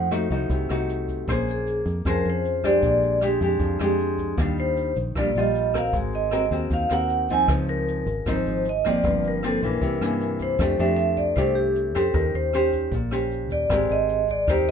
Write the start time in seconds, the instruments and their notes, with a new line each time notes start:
Already playing: fingered electric bass F2, nylon-string guitar F3
0.11 nylon-string guitar A3 D#4 F#4, cross-stick, closed hi-hat
0.30 fingered electric bass C2, nylon-string guitar A3 D#4 F#4, kick, closed hi-hat, shaker
0.50 fingered electric bass C2, nylon-string guitar C3, kick, closed hi-hat, shaker
0.69 fingered electric bass C2, nylon-string guitar A3 D#4 F#4, cross-stick, closed hi-hat, shaker
0.89 closed hi-hat
1.08 kick, closed hi-hat, shaker
1.28 fingered electric bass A#1, nylon-string guitar A#3 C#4 G#4 C5, kick, cross-stick, closed hi-hat, shaker
1.48 vibraphone G#4, closed hi-hat, shaker
1.67 closed hi-hat, shaker
1.86 fingered electric bass F2, kick, closed hi-hat, shaker
2.05 fingered electric bass F2, nylon-string guitar F3 C#4 G#4 C5, vibraphone A#4, kick, cross-stick, closed hi-hat, shaker
2.25 fingered electric bass F2, closed hi-hat, shaker
2.30 vibraphone C5
2.44 closed hi-hat
2.63 nylon-string guitar G#3 D4 G4, vibraphone D5, kick, cross-stick, closed hi-hat, shaker
2.82 fingered electric bass A#1, nylon-string guitar A#2, kick, closed hi-hat, shaker
3.02 closed hi-hat, shaker
3.21 nylon-string guitar G#3 D4 G4, cross-stick, closed hi-hat, shaker
3.40 fingered electric bass F2, nylon-string guitar G#3 D4 G4, kick, closed hi-hat, shaker
3.60 fingered electric bass F2, nylon-string guitar F3, kick, closed hi-hat, shaker
3.79 fingered electric bass F2, nylon-string guitar G#3 D4 G4, cross-stick, closed hi-hat, shaker
3.99 closed hi-hat
4.18 kick, closed hi-hat, shaker
4.38 fingered electric bass D#2, nylon-string guitar D#3 G3 D4 F4, kick, cross-stick, closed hi-hat, shaker
4.57 vibraphone C5, closed hi-hat, shaker
4.77 closed hi-hat, shaker
4.96 fingered electric bass A#1, kick, closed hi-hat, shaker
5.15 fingered electric bass A#1, nylon-string guitar A#2 G3 D4 F4, vibraphone D5, kick, cross-stick, closed hi-hat, shaker
5.35 fingered electric bass A#1, nylon-string guitar G3 F4, closed hi-hat, shaker
5.39 vibraphone D#5
5.54 closed hi-hat, shaker
5.74 nylon-string guitar C4 F#4 A#4, vibraphone F5, kick, cross-stick, closed hi-hat, shaker
5.93 fingered electric bass G#1, nylon-string guitar G#3, kick, closed hi-hat, shaker
6.12 vibraphone D#5, closed hi-hat, shaker
6.31 nylon-string guitar C4 F#4 A#4, cross-stick, closed hi-hat
6.51 fingered electric bass D#2, nylon-string guitar C4 F#4 A#4, kick, closed hi-hat, shaker
6.70 fingered electric bass D#2, nylon-string guitar D#3, vibraphone F5, kick, closed hi-hat, shaker
6.89 fingered electric bass D#2, nylon-string guitar C4 F#4 A#4, vibraphone F#5, cross-stick, closed hi-hat, shaker
7.09 closed hi-hat, shaker
7.29 nylon-string guitar F3 C4 D#4, vibraphone G#5, kick, closed hi-hat, shaker
7.48 fingered electric bass C#2, nylon-string guitar C#3, kick, cross-stick, closed hi-hat, shaker
7.68 vibraphone A#4, closed hi-hat, shaker
7.88 closed hi-hat
8.06 fingered electric bass G#1, kick, closed hi-hat, shaker
8.26 fingered electric bass G#1, nylon-string guitar G#2 F3 C4 D#4, vibraphone C5, kick, cross-stick, closed hi-hat, shaker
8.46 fingered electric bass G#1, closed hi-hat, shaker
8.65 closed hi-hat, shaker
8.69 vibraphone D#5
8.84 nylon-string guitar F3 A#3 C4, vibraphone D5, kick, cross-stick, closed hi-hat, shaker
9.04 fingered electric bass G1, nylon-string guitar G2, kick, closed hi-hat, shaker
9.23 closed hi-hat, shaker
9.28 vibraphone A#4
9.43 nylon-string guitar F3 A#3 C4, vibraphone A4, cross-stick, closed hi-hat
9.62 fingered electric bass A#1, nylon-string guitar E3 A#3 C#4, kick, closed hi-hat, shaker
9.66 vibraphone A#4
9.81 fingered electric bass C2, nylon-string guitar C3, kick, closed hi-hat, shaker
10.01 fingered electric bass G2, nylon-string guitar E3 A#3 C#4, cross-stick, closed hi-hat, shaker
10.21 closed hi-hat
10.39 vibraphone C5, kick, closed hi-hat, shaker
10.59 fingered electric bass F2, nylon-string guitar F3 A3 D4 G4, kick, cross-stick, closed hi-hat, shaker
10.78 fingered electric bass F2, nylon-string guitar A3 D4 G4, vibraphone E5, closed hi-hat, shaker
10.97 vibraphone E5, closed hi-hat
11.17 vibraphone D5, kick, closed hi-hat, shaker
11.36 fingered electric bass C2, nylon-string guitar C3 A3 D4 G4, vibraphone C5, kick, cross-stick, closed hi-hat, shaker
11.55 vibraphone G4, closed hi-hat, shaker
11.75 closed hi-hat
11.95 fingered electric bass F2, nylon-string guitar C#4 G4 C5, vibraphone A4, kick, cross-stick, closed hi-hat, shaker
12.14 fingered electric bass D#2, nylon-string guitar D#3, vibraphone A#4, kick, closed hi-hat, shaker
12.34 fingered electric bass D#2, vibraphone C5, closed hi-hat, shaker
12.53 nylon-string guitar C#4 G4 C5, cross-stick, closed hi-hat
12.72 kick, closed hi-hat, shaker
12.91 fingered electric bass A#1, nylon-string guitar A#2, kick, closed hi-hat, shaker
13.11 nylon-string guitar C#4 G4 C5, cross-stick, closed hi-hat, shaker
13.31 closed hi-hat
13.50 fingered electric bass D#2, vibraphone D5, kick, closed hi-hat, shaker
13.70 fingered electric bass G#1, nylon-string guitar G#3 C4 G4 A#4, kick, cross-stick, closed hi-hat, shaker
13.88 fingered electric bass G#1, vibraphone D#5, closed hi-hat, shaker
14.08 closed hi-hat, shaker
14.28 vibraphone D5, kick, closed hi-hat, shaker
14.47 fingered electric bass D#2, nylon-string guitar D#3 C4 G4 A#4, vibraphone C5, kick, cross-stick, closed hi-hat, shaker
14.67 closed hi-hat, shaker